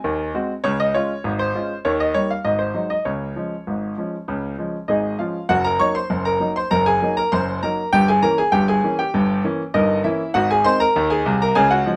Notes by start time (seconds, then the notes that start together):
Already playing: G#5
0.04 D#2 D#3
0.34 G#3 C4 F#4
0.64 C#2 C#3 C#5
0.80 D#5
0.94 G#3 C#4 F4 C#5
1.24 G#1 G#2
1.39 C5
1.55 G#3 C#4 F4
1.85 D#2 D#3 C#5
2.00 D#5
2.14 G3 A#3 D#4 C#5
2.31 F5
2.45 G#1 G#2 D#5
2.59 C5
2.74 F#3 G#3 D#4
2.90 D#5
3.05 C#2 C#3 C#5
3.36 F3 G#3 C#4
3.67 G#1 G#2
3.98 F3 G#3 C#4
4.28 C#2 C#3
4.58 F3 G#3 C#4
4.88 G#1 G#2 D#4 G#4 D#5
5.19 F3 G#3 C#4 F4 F5
5.49 F#1 F#2 F#4 F#5
5.64 A#4 A#5
5.79 F#3 A#3 D#4 C#5 C#6
5.95 C5 C6
6.10 F#1 F#2
6.25 A#4 A#5
6.40 F#3 A#3 D#4
6.56 C5 C6
6.71 F#1 F#2 A#4 A#5
6.86 G#4 G#5
7.02 F#3 A#3 D#4
7.17 A#4 A#5
7.32 F#1 F#2 C5 C6
7.63 F#3 A#3 D#4 A#4 A#5
7.93 G1 G2 G4 G5
8.08 G#4 G#5
8.22 E3 A#3 C#4 A#4 A#5
8.38 G#4 G#5
8.52 G1 G2 G4 G5
8.68 G#4 G#5
8.84 E3 A#3 C#4
8.99 G4 G5
9.14 G1 G2
9.44 E3 A#3 C#4
9.74 G1 G2 D#4 A#4 D#5
10.04 E3 A#3 C#4 E4 E5
10.34 G#1 G#2 F#4 F#5
10.51 G#4 G#5
10.64 D#3 G#3 C4 C5 C6
10.80 A#4 A#5
10.96 D#2 D#3
11.10 G#4 G#5
11.25 C2 C3
11.42 A#4 A#5
11.55 C#2 C#3 G#4 G#5
11.71 F#4 F#5
11.86 F3 G#3 C#4